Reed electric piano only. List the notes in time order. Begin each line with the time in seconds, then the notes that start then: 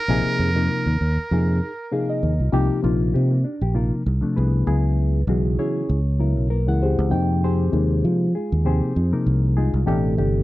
0.09 C3 F3 A#3 D#4 G#4
0.55 C3 F3 A#3 D#4 A#4
1.01 D#4 A#4
1.32 C3 F3 A#3 D#4 G#4
1.63 D#4 G#4
1.91 C3 F3 A#3 D#4 G#4 F5
2.09 D#5
2.39 D#4 F4
2.52 C3 F3 A#3 D#4 G4
2.83 C3 F3 A#3 D#4 F4
3.14 G4
3.31 A#3
3.44 D4 D#4 G4
3.62 G4
3.74 C3 F3 A#3 D#4 F4 A#4
4.06 D#4 G4
4.21 C3 F3 A3 D4
4.36 B3 E4 G#4 B4
4.67 C#3 F#3 B3 E4 G#4
5.28 C#3 E3 F#3 G#3 B3 D#4 E4 F#4 G#4
5.59 C#4 E4 G#4 C#5
5.89 E4 G#4
6.19 C#3 F#3 B3 E4 A#4
6.50 A#3 E4 A#4 B4
6.67 C#3 E3 G#3 E4 F#5
6.83 C4 G4 G#4 C5
7.10 C3 F3 A#3 D#4 G5
7.44 C4 G4 G#4 C5
7.72 C3 F3 G#3 A#3 D#4
8.34 G#3 D#4 F4 G#4
8.64 C3 F3 A#3 C4 D#4 G4 G#4 C5
8.95 D#4 F4
9.12 C3 F3 A#3 D#4 A#4
9.57 G#3 D#4 F4 G#4
9.73 D#4 G#4
9.86 B2 E3 A3 C4 D4 E4 G4 A4
10.17 C3 E3 A3 D4 G4